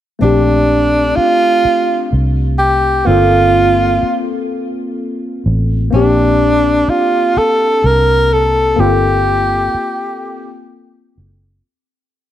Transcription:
0.19 fingered electric bass A#1, tine electric piano A3 C4 D4, tenor saxophone D4
0.24 tine electric piano G4
1.16 tenor saxophone F4, muted fingered electric bass stroke
1.65 muted fingered electric bass stroke
2.13 fingered electric bass C2
2.59 tenor saxophone G4
3.05 fingered electric bass G1, tine electric piano A#3 C4 F4, tenor saxophone F4
3.10 tine electric piano A4
4.03 muted fingered electric bass stroke
5.46 fingered electric bass A1
5.91 fingered electric bass A#1, tine electric piano A#3 C4 D4, tenor saxophone D4
5.96 tine electric piano G4
6.88 tenor saxophone F4, muted fingered electric bass stroke
7.37 tenor saxophone A4, muted fingered electric bass stroke
7.84 fingered electric bass C2, tenor saxophone A#4
8.33 tenor saxophone A4
8.76 fingered electric bass G1, tine electric piano A#3 C4 F4
8.80 tenor saxophone G4, tine electric piano A4
9.74 muted fingered electric bass stroke
11.18 fingered electric bass F#1

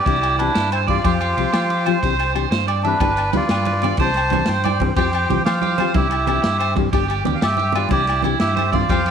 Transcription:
Already playing: melodica G4 D5
0.06 fingered electric bass C2, nylon-string guitar E3 C4 D4 G4, clean electric guitar E4, kick, ride
0.21 clean electric guitar E4, ride, low agogo
0.38 nylon-string guitar E3 C4 D4 G4, melodica D4 B4, clean electric guitar E4, ride, low agogo
0.54 fingered electric bass G2, clean electric guitar E4, snare, ride
0.72 melodica E4 C5, clean electric guitar C5, ride, low agogo
0.87 nylon-string guitar E3 C4 D4 G4, melodica F4 D5, clean electric guitar D5, kick, ride
1.04 fingered electric bass F2, nylon-string guitar F3 F4 G4, melodica F4 C5, clean electric guitar G4, muted nylon-string guitar stroke, kick, ride, low agogo
1.21 clean electric guitar G4, ride, low agogo
1.37 fingered electric bass C2, nylon-string guitar F3 C4 G4, clean electric guitar G4, ride
1.52 fingered electric bass F3, clean electric guitar G4, snare, ride, low agogo
1.70 clean electric guitar G4, ride
1.86 nylon-string guitar F3 C4 F4 G4, clean electric guitar C5, ride, low agogo
2.02 fingered electric bass C2, nylon-string guitar E3 C4 D4 G4, clean electric guitar C5, kick, ride
2.19 clean electric guitar C5, ride, low agogo
2.34 nylon-string guitar E3 C4 D4 G4, clean electric guitar C5, ride, low agogo
2.51 fingered electric bass G2, clean electric guitar C5, snare, ride
2.68 clean electric guitar D5, ride, low agogo
2.83 nylon-string guitar E3 C4 D4 G4, melodica D4 B4, clean electric guitar E5, ride
3.00 fingered electric bass G1, nylon-string guitar B3 D4 G4, clean electric guitar B4, kick, ride, high conga, low agogo
3.16 clean electric guitar B4, ride, low agogo
3.33 fingered electric bass D2, nylon-string guitar B3 D4 G4, melodica F4, clean electric guitar B4, ride, high conga, low conga
3.37 melodica D5
3.49 fingered electric bass G2, clean electric guitar B4, snare, ride, low agogo
3.60 low conga
3.65 clean electric guitar B4, ride, high conga
3.75 low conga
3.82 nylon-string guitar B3 D4 G4, clean electric guitar D5, ride, low conga, low agogo
3.97 fingered electric bass C2, nylon-string guitar E3 C4 D4 G4, clean electric guitar C5, melodica C5 A5, kick, ride, high conga, low conga
4.14 clean electric guitar C5, snare, ride, low agogo
4.30 nylon-string guitar E3 C4 D4 G4, clean electric guitar C5, ride, high conga, low conga, low agogo
4.46 fingered electric bass G2, melodica C5 G5, clean electric guitar C5, snare, ride
4.64 clean electric guitar D5, ride, high conga, low agogo
4.80 nylon-string guitar E3 C4 D4 G4, kick, ride, low conga
4.96 fingered electric bass F2, nylon-string guitar F3 C4 F4 G4, clean electric guitar G4, melodica C5 G5, kick, ride, high conga, low agogo
5.13 clean electric guitar G4, ride, low agogo
5.28 fingered electric bass C2, nylon-string guitar F3 C4 F4 G4, clean electric guitar G4, ride, high conga, low conga
5.45 fingered electric bass F3, clean electric guitar G4, melodica C5 F5, snare, ride, low agogo
5.54 low conga
5.62 clean electric guitar G4, ride, high conga
5.78 nylon-string guitar F3 C4 F4 G4, clean electric guitar C5, ride, low conga, low agogo
5.94 fingered electric bass C2, nylon-string guitar E3 C4 D4 G4, clean electric guitar E4, melodica G4 E5, kick, ride, high conga, low conga
6.10 clean electric guitar E4, ride, low agogo
6.27 nylon-string guitar E3 C4 D4 G4, clean electric guitar E4, ride, low conga, low agogo
6.42 fingered electric bass G2, clean electric guitar E4, snare, ride
6.59 clean electric guitar C5, ride, low agogo
6.76 nylon-string guitar E3 C4 D4 G4, muted clean electric guitar stroke, kick, ride, low conga
6.92 fingered electric bass G1, nylon-string guitar B3 D4 G4, clean electric guitar G4, kick, ride, high conga, low agogo
7.08 clean electric guitar G4, ride, low agogo
7.24 fingered electric bass D2, nylon-string guitar B3 D4, clean electric guitar G4, ride, high conga, low conga
7.35 melodica F5
7.41 fingered electric bass G2, clean electric guitar G4, melodica G4 E5, snare, ride, low agogo
7.51 low conga
7.57 clean electric guitar G4, ride, high conga
7.65 low conga
7.72 nylon-string guitar B3 D4, melodica F4 D5, clean electric guitar B4, ride, low conga, low agogo
7.77 nylon-string guitar G4
7.89 fingered electric bass C2, nylon-string guitar E3 C4 D4 G4, clean electric guitar E4, melodica G4 D5, kick, ride, high conga, low conga
8.07 clean electric guitar E4, snare, ride, low agogo
8.22 nylon-string guitar E3 C4 D4 G4, clean electric guitar E4, ride, high conga, low conga, low agogo
8.40 fingered electric bass G2, clean electric guitar E4, melodica G4 E5, snare, ride
8.56 clean electric guitar C5, ride, high conga, low agogo
8.72 nylon-string guitar E3 C4 D4 G4, melodica F4 D5, clean electric guitar D5, kick, ride, low conga
8.89 fingered electric bass F2, nylon-string guitar F3 C4 F4 G4, clean electric guitar G4, melodica C5 F5, kick, ride, high conga, low conga, low agogo
9.06 clean electric guitar G4, ride, low conga

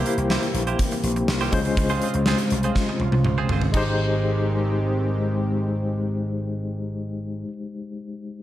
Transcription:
Already playing: analog synth pad C3 E3 A#3 G4, tine electric piano A#3 E4 G4 C5 G5
0.06 clean electric guitar A#3 E4 G4 C5, closed hi-hat
0.18 slap bass C2, muted clean electric guitar stroke, closed hi-hat
0.30 clean electric guitar A#3 E4 G4 C5, snare
0.43 muted clean electric guitar stroke, closed hi-hat
0.54 slap bass A#1, muted clean electric guitar stroke, closed hi-hat
0.67 clean electric guitar A#3 E4 G4 C5, closed hi-hat
0.79 muted clean electric guitar stroke, kick, closed hi-hat
0.91 muted clean electric guitar stroke, closed hi-hat
1.03 slap bass A#1, closed hi-hat
1.16 muted clean electric guitar stroke, closed hi-hat
1.28 slap bass C2, muted clean electric guitar stroke, snare
1.41 clean electric guitar A#3 E4 G4 C5, closed hi-hat
1.51 slap bass C#2, analog synth pad C#3 G#3 F4, tine electric piano G#3 C#4 F4 C5, kick, closed hi-hat
1.65 muted clean electric guitar stroke, closed hi-hat
1.77 muted clean electric guitar stroke, kick, closed hi-hat
1.89 clean electric guitar C4 F4 G#4 C5, closed hi-hat
2.02 clean electric guitar C4 F4 G#4 C5, closed hi-hat
2.14 slap bass C#2, muted clean electric guitar stroke, closed hi-hat
2.26 clean electric guitar C4 F4 G#4 C5, snare
2.38 muted clean electric guitar stroke, closed hi-hat
2.50 slap bass C2, muted clean electric guitar stroke, closed hi-hat
2.63 clean electric guitar C4 F4 G#4 C5, closed hi-hat
2.75 muted clean electric guitar stroke, kick, snare
2.89 muted clean electric guitar stroke
3.00 slap bass C2, high tom
3.12 muted clean electric guitar stroke, high tom
3.25 slap bass C#2, muted clean electric guitar stroke, mid tom
3.38 clean electric guitar C4 F4 G#4 C5
3.49 slap bass G1, clean electric guitar C4 F4 G#4 C5, floor tom
3.62 muted clean electric guitar stroke, floor tom
3.72 slap bass G#1, analog synth pad D#3 G#3 C4 G4, tine electric piano G#3 D#4 G4, clean electric guitar G#3 D#4, kick, crash
3.77 clean electric guitar G4 C5, tine electric piano C5

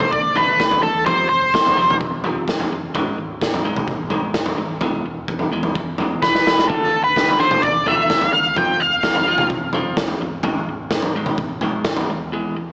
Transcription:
Already playing: clean electric guitar D3 A3 D4, lead electric guitar C5
0.00 floor tom, mid tom
0.11 picked electric bass D2, clean electric guitar D3 A3, lead electric guitar D5, kick
0.36 picked electric bass D2, clean electric guitar D3 A3 D4, lead electric guitar B4, floor tom
0.59 picked electric bass D2, clean electric guitar D3 A3, kick, snare
0.71 floor tom
0.83 picked electric bass E2, clean electric guitar D3 A3, lead electric guitar A4
1.06 picked electric bass F1, clean electric guitar F2 C3 F3, lead electric guitar C5, kick, floor tom
1.29 picked electric bass F1, clean electric guitar F2 C3, lead electric guitar C5
1.54 picked electric bass F1, clean electric guitar F2 C3, kick, snare
1.66 floor tom
1.76 picked electric bass F1, clean electric guitar F2 C3 F3
1.90 floor tom, mid tom
2.01 clean electric guitar F2 C3, picked electric bass F2, kick
2.24 picked electric bass F1, clean electric guitar F2 C3 F3, floor tom
2.48 picked electric bass F1, clean electric guitar F2 C3, kick, snare
2.60 floor tom
2.72 picked electric bass F1, clean electric guitar F2 C3
2.94 picked electric bass G#1, clean electric guitar G#2 D#3 G#3, kick, floor tom
3.18 picked electric bass G#1, clean electric guitar G#2 D#3
3.41 picked electric bass G#1, clean electric guitar G#2 D#3, kick, snare
3.54 floor tom
3.64 clean electric guitar G#2 D#3 G#3
3.76 floor tom, mid tom
3.87 picked electric bass G#1, clean electric guitar G#2 D#3, kick
4.10 picked electric bass G#1, clean electric guitar G#2 D#3 G#3, floor tom
4.34 picked electric bass G#1, clean electric guitar G#2 D#3, kick, snare
4.46 floor tom
4.58 picked electric bass G#1, clean electric guitar G#2 D#3
4.81 picked electric bass E1, clean electric guitar E2 E3 G#3, kick, floor tom
5.05 picked electric bass E1, clean electric guitar E2 E3
5.28 picked electric bass E1, clean electric guitar E2 E3, kick
5.39 floor tom
5.52 picked electric bass E1, clean electric guitar E2 E3 G#3
5.63 floor tom
5.75 picked electric bass E2, clean electric guitar E2 E3, kick
5.98 picked electric bass E1, clean electric guitar E2 E3 G#3, floor tom
6.22 picked electric bass E1, clean electric guitar E2 E3, lead electric guitar B4, kick, snare
6.35 snare
6.46 picked electric bass E1, clean electric guitar E2 E3, snare
6.59 snare
6.69 picked electric bass D2, clean electric guitar D3 D4 F4, lead electric guitar A4, kick, floor tom
6.92 picked electric bass D2, clean electric guitar D3 D4
7.04 lead electric guitar B4
7.16 picked electric bass D2, clean electric guitar D3 D4, kick, snare
7.28 floor tom
7.40 clean electric guitar D3 D4 F4, lead electric guitar C5
7.51 floor tom, mid tom
7.62 picked electric bass D2, clean electric guitar D3 D4, lead electric guitar D5, kick
7.86 picked electric bass D2, clean electric guitar D3 D4 F4, lead electric guitar E5, floor tom
8.10 picked electric bass D2, clean electric guitar D3 D4, kick, snare
8.21 floor tom
8.33 picked electric bass D2, clean electric guitar D3 D4, lead electric guitar F5
8.56 picked electric bass F1, clean electric guitar F3 C4 F4, lead electric guitar G5, kick, floor tom
8.80 picked electric bass F1, clean electric guitar F3 C4, lead electric guitar F5
9.03 picked electric bass F1, clean electric guitar F3 C4, kick, snare
9.15 floor tom
9.26 picked electric bass F1, clean electric guitar F3 C4 F4
9.38 floor tom, mid tom
9.50 picked electric bass F2, clean electric guitar F3 C4, kick
9.73 picked electric bass F1, clean electric guitar F3 C4 F4, floor tom
9.97 picked electric bass F1, clean electric guitar F3 C4, kick, snare
10.08 floor tom
10.21 picked electric bass G1, clean electric guitar F3 C4
10.43 picked electric bass G#1, clean electric guitar G#2 D#3 G#3, kick, floor tom
10.68 picked electric bass G#1, clean electric guitar G#2 D#3
10.91 picked electric bass G#1, clean electric guitar G#2 D#3, kick, snare
11.03 floor tom
11.15 clean electric guitar G#2 D#3 G#3
11.26 floor tom, mid tom
11.38 picked electric bass G#1, clean electric guitar G#2 D#3, kick
11.61 picked electric bass G#1, clean electric guitar G#2 D#3 G#3, floor tom
11.85 picked electric bass G#1, clean electric guitar G#2 D#3, kick, snare
11.97 floor tom
12.09 picked electric bass D#2, clean electric guitar G#2 D#3
12.32 clean electric guitar E2 E3 G#3
12.57 clean electric guitar E2 E3

